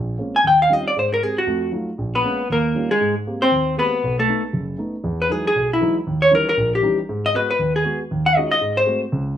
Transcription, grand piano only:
0.00 0.15 A#1 medium
0.18 0.35 G#3 soft
0.18 0.34 A#3 soft
0.18 0.35 C4 soft
0.18 0.35 C#4 soft
0.44 0.66 D#2 medium
0.70 0.86 G3 soft
0.70 0.86 C4 soft
0.70 0.86 C#4 soft
0.70 0.86 D#4 soft
0.70 0.86 F4 soft
0.96 1.18 G#2 medium
1.21 1.37 G#3 soft
1.21 1.38 C4 soft
1.21 1.38 G4 soft
1.47 1.68 F2 medium
1.47 1.69 A3 medium
1.72 1.88 F#3 soft
1.72 1.89 A3 soft
1.72 1.88 D#4 soft
1.72 1.89 F4 medium
1.98 2.20 A#1 medium
2.24 2.40 G#3 soft
2.24 2.40 A#3 soft
2.24 2.40 C#4 soft
2.50 2.71 D#2 medium
2.75 2.91 G3 soft
2.75 2.91 C#4 soft
2.75 2.91 D#4 soft
2.75 2.91 F4 medium
3.01 3.22 G#2 medium
3.27 3.42 G#3 soft
3.27 3.42 A#3 soft
3.27 3.42 C4 soft
3.27 3.42 G4 soft
3.52 3.73 D#2 medium
3.77 3.93 G#3 soft
3.77 3.93 A#3 soft
3.77 3.93 C4 soft
3.77 3.93 G4 soft
4.04 4.25 B1 medium
4.28 4.44 A3 soft
4.28 4.44 B3 soft
4.28 4.44 D#4 medium
4.53 4.75 F#1 medium
4.78 4.94 A3 soft
4.78 4.95 B3 soft
4.78 4.95 D#4 soft
5.04 5.26 E2 medium
5.29 5.46 E3 soft
5.29 5.46 F#3 soft
5.29 5.46 G#3 soft
5.29 5.46 D#4 medium
5.56 5.77 B1 medium
5.81 5.97 E3 medium
5.81 5.97 F#3 soft
5.81 5.97 G#3 soft
5.81 5.97 D#4 medium
6.07 6.28 D#2 medium
6.31 6.48 E3 medium
6.31 6.47 G3 soft
6.31 6.48 C#4 soft
6.31 6.48 D#4 medium
6.57 6.79 A#1 medium
6.82 6.99 E3 medium
6.82 6.98 G3 soft
6.82 6.99 C#4 soft
6.82 6.99 D#4 medium
7.09 7.30 G#2 medium
7.34 7.50 G#3 soft
7.34 7.50 B3 soft
7.34 7.50 F#4 medium
7.59 7.81 D#2 medium
7.83 8.00 G#3 medium
7.83 8.00 B3 soft
7.83 8.01 F#4 medium
8.11 8.32 D#2 medium
8.36 8.52 G#3 soft
8.36 8.52 C#4 soft
8.36 8.52 D#4 soft
8.36 8.52 F4 soft
8.36 8.52 F#4 medium
8.61 8.83 G#2 medium
8.86 9.02 G#3 soft
8.86 9.02 A3 soft
8.86 9.02 C4 soft
8.86 9.03 F#4 medium
9.12 9.34 C#2 medium

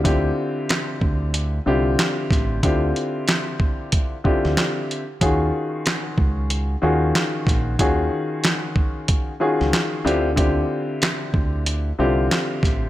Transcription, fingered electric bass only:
0.00 0.30 D2 loud
1.02 1.59 D2 medium
1.67 1.95 C2 medium
2.31 2.60 A1 medium
2.63 2.92 D2 loud
4.45 4.56 D2 medium
5.21 5.50 D#2 loud
6.18 6.75 C#2 medium
6.83 7.12 D#2 medium
7.47 7.76 A#1 medium
7.79 8.08 D#2 loud
9.61 9.72 C#2 medium
10.06 10.63 D2 loud
11.34 11.91 D2 medium
11.99 12.28 C2 medium
12.63 12.89 A1 medium

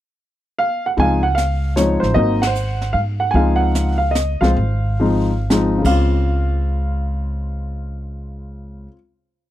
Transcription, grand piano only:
0.59 0.85 F5 medium
0.86 0.91 F#5 medium
0.97 1.20 F3 medium
0.97 1.21 G#3 soft
0.97 1.21 C4 medium
0.97 1.21 D#4 medium
0.97 1.25 G#5 medium
1.02 1.33 F5 medium
1.23 1.35 F#5 medium
1.35 1.72 F5 medium
1.76 2.15 F3 medium
1.76 2.16 G#3 soft
1.76 2.15 C4 soft
1.76 2.15 D#4 medium
1.76 2.00 C#5 medium
2.00 2.15 C5 medium
2.14 2.39 F#3 medium
2.14 2.39 A#3 medium
2.14 2.39 C4 medium
2.14 2.39 D#4 medium
2.14 2.45 C5 medium
2.14 2.42 D#5 medium
2.42 2.91 F#5 medium
2.47 2.93 C5 medium
2.93 2.99 F5 medium
3.20 3.34 F#5 medium
3.31 3.95 F3 medium
3.31 3.95 G#3 soft
3.31 3.59 G#5 medium
3.35 3.95 C4 medium
3.35 3.96 D#4 medium
3.35 3.96 F5 medium
3.56 3.95 F#5 medium
3.98 4.12 F5 medium
4.11 4.41 D#5 medium
4.41 4.54 F3 medium
4.41 4.55 G#3 medium
4.41 4.55 C4 medium
4.41 4.55 F4 medium
4.41 5.47 C5 medium
4.41 5.45 F5 medium
5.00 5.29 F3 medium
5.00 5.29 G#3 medium
5.00 5.29 C4 soft
5.00 5.29 D#4 medium
5.50 5.81 F3 medium
5.50 5.81 G#3 medium
5.50 5.82 C4 medium
5.50 5.82 D#4 medium
5.78 8.83 C#3 medium
5.82 8.87 G#3 medium
5.82 8.87 F5 medium
5.87 8.92 C4 medium
5.87 8.96 F4 medium

